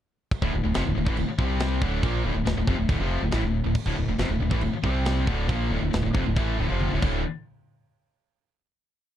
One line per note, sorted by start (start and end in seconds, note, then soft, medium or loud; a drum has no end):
0.31 kick loud
0.31 china medium
0.42 0.52 D1 loud
0.42 0.52 D2 medium
0.42 0.53 A2 loud
0.42 kick medium
0.54 0.63 D1 medium
0.54 0.62 D2 medium
0.54 0.62 A2 medium
0.63 0.74 D1 medium
0.63 0.74 D2 medium
0.63 0.74 A2 medium
0.74 0.85 F1 loud
0.74 0.84 F2 loud
0.74 0.85 C3 loud
0.74 snare loud
0.74 china medium
0.85 0.96 D1 medium
0.85 0.94 D2 medium
0.85 0.95 A2 medium
0.95 1.06 D1 medium
0.95 1.05 D2 medium
0.95 1.04 A2 medium
1.05 1.16 A1 medium
1.05 1.16 A2 medium
1.05 1.17 E3 loud
1.05 kick loud
1.17 1.28 D1 medium
1.17 1.27 D2 medium
1.17 1.28 A2 medium
1.17 china medium
1.28 muted overdriven electric guitar stroke medium
1.28 muted distorted electric guitar stroke medium
1.28 muted fingered electric bass stroke soft
1.38 1.78 C2 loud
1.38 1.80 C3 medium
1.38 1.81 G3 loud
1.38 1.81 C4 loud
1.38 kick loud
1.60 snare loud
1.60 china medium
1.81 2.01 D1 medium
1.81 2.02 D2 medium
1.81 2.02 A2 loud
1.81 2.02 D3 loud
1.81 kick loud
2.02 2.23 A#1 loud
2.02 2.23 A#2 loud
2.02 2.23 F3 loud
2.02 2.23 A#3 loud
2.02 kick loud
2.02 china medium
2.24 2.34 D1 loud
2.24 2.34 D2 medium
2.24 2.34 A2 loud
2.35 2.45 D1 medium
2.35 2.44 D2 medium
2.35 2.44 A2 medium
2.45 2.56 D1 medium
2.45 2.56 D2 medium
2.45 2.56 A2 medium
2.45 snare loud
2.45 china medium
2.57 2.67 D1 medium
2.57 2.67 D2 medium
2.57 2.68 A2 medium
2.67 2.78 F1 loud
2.67 2.77 F2 medium
2.67 2.78 C3 loud
2.67 kick loud
2.78 2.88 D1 medium
2.78 2.88 D2 medium
2.78 2.89 A2 medium
2.88 2.99 D1 medium
2.88 2.99 D2 loud
2.88 3.00 A2 loud
2.88 kick loud
2.88 china medium
3.00 3.20 F1 loud
3.00 3.21 F2 loud
3.00 3.21 C3 loud
3.00 3.21 F3 loud
3.22 3.32 D1 medium
3.22 3.33 D2 medium
3.22 3.33 A2 medium
3.31 3.42 A1 loud
3.31 3.43 A2 medium
3.31 3.43 E3 loud
3.31 snare loud
3.31 china medium
3.42 3.63 D1 medium
3.42 3.61 D2 medium
3.42 3.61 A2 medium
3.65 3.75 D1 medium
3.65 3.76 D2 medium
3.65 3.76 A2 medium
3.75 kick loud
3.75 china medium
3.75 crash loud
3.86 3.96 D1 loud
3.86 3.96 D2 medium
3.86 3.96 A2 loud
3.86 kick medium
3.97 4.07 D1 medium
3.97 4.08 D2 medium
3.97 4.08 A2 medium
4.08 4.18 D1 medium
4.08 4.19 D2 medium
4.08 4.19 A2 medium
4.18 4.28 F1 loud
4.18 4.29 F2 medium
4.18 4.30 C3 loud
4.18 snare loud
4.18 china medium
4.29 4.39 D1 medium
4.29 4.41 D2 medium
4.29 4.41 A2 medium
4.40 4.50 D1 medium
4.40 4.52 D2 medium
4.40 4.51 A2 medium
4.51 4.61 A1 loud
4.51 4.62 A2 loud
4.51 4.62 E3 loud
4.51 kick loud
4.61 4.72 D1 medium
4.61 4.72 D2 medium
4.61 4.74 A2 medium
4.61 china medium
4.72 muted overdriven electric guitar stroke medium
4.72 muted fingered electric bass stroke soft
4.72 muted distorted electric guitar stroke medium
4.84 5.24 C2 medium
4.84 5.25 C3 medium
4.84 5.26 G3 medium
4.84 5.27 C4 loud
4.84 kick loud
5.05 snare loud
5.05 china medium
5.26 5.47 D1 medium
5.26 5.47 D2 loud
5.26 5.48 A2 loud
5.26 5.48 D3 loud
5.26 kick loud
5.48 5.69 A#1 loud
5.48 5.68 A#2 medium
5.48 5.69 F3 loud
5.48 5.70 A#3 loud
5.48 kick loud
5.48 china medium
5.69 5.81 D1 medium
5.69 5.79 D2 medium
5.69 5.80 A2 loud
5.80 5.92 D1 medium
5.80 5.90 D2 medium
5.80 5.90 A2 medium
5.91 6.04 D1 medium
5.91 6.01 D2 medium
5.91 6.01 A2 medium
5.91 snare loud
5.91 china medium
5.95 6.05 D2 medium
5.95 6.05 A2 medium
6.02 6.14 D1 medium
6.02 6.13 D2 medium
6.02 6.14 A2 medium
6.13 6.25 F1 loud
6.13 6.25 F2 loud
6.13 6.25 C3 loud
6.13 kick loud
6.25 6.36 D1 medium
6.25 6.35 D2 medium
6.25 6.34 A2 medium
6.36 6.57 A1 medium
6.36 6.58 A2 loud
6.36 6.58 E3 loud
6.36 6.58 A3 loud
6.36 kick loud
6.36 china medium
6.58 6.69 D1 loud
6.58 6.67 D2 loud
6.58 6.68 A2 loud
6.68 6.91 F1 medium
6.68 6.90 F2 medium
6.68 6.90 C3 loud
6.68 6.91 F3 loud
6.80 high tom medium
6.91 7.02 D1 medium
6.91 6.99 D2 medium
6.91 7.00 A2 loud
7.00 7.23 D1 loud
7.00 7.19 D2 medium
7.00 7.20 A2 loud
7.00 7.20 D3 loud
7.00 kick loud
7.00 crash medium